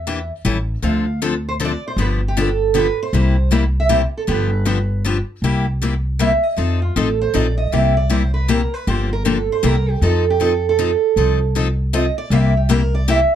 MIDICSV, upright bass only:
0, 0, Header, 1, 2, 480
1, 0, Start_track
1, 0, Tempo, 382409
1, 1051, Time_signature, 3, 2, 24, 8
1, 16758, End_track
2, 0, Start_track
2, 0, Title_t, "Upright bass"
2, 0, Program_c, 0, 32
2, 0, Note_on_c, 0, 40, 77
2, 373, Note_off_c, 0, 40, 0
2, 562, Note_on_c, 0, 33, 82
2, 949, Note_off_c, 0, 33, 0
2, 1036, Note_on_c, 0, 38, 80
2, 2195, Note_off_c, 0, 38, 0
2, 2466, Note_on_c, 0, 31, 82
2, 3630, Note_off_c, 0, 31, 0
2, 3927, Note_on_c, 0, 36, 83
2, 5083, Note_off_c, 0, 36, 0
2, 5369, Note_on_c, 0, 31, 86
2, 6525, Note_off_c, 0, 31, 0
2, 6801, Note_on_c, 0, 36, 77
2, 7960, Note_off_c, 0, 36, 0
2, 8256, Note_on_c, 0, 41, 84
2, 8641, Note_off_c, 0, 41, 0
2, 8735, Note_on_c, 0, 33, 80
2, 9145, Note_off_c, 0, 33, 0
2, 9223, Note_on_c, 0, 34, 79
2, 9629, Note_off_c, 0, 34, 0
2, 9702, Note_on_c, 0, 36, 83
2, 10853, Note_off_c, 0, 36, 0
2, 11136, Note_on_c, 0, 31, 85
2, 11905, Note_off_c, 0, 31, 0
2, 12090, Note_on_c, 0, 36, 81
2, 12477, Note_off_c, 0, 36, 0
2, 12569, Note_on_c, 0, 41, 85
2, 13723, Note_off_c, 0, 41, 0
2, 14010, Note_on_c, 0, 36, 79
2, 15162, Note_off_c, 0, 36, 0
2, 15443, Note_on_c, 0, 36, 83
2, 16597, Note_off_c, 0, 36, 0
2, 16758, End_track
0, 0, End_of_file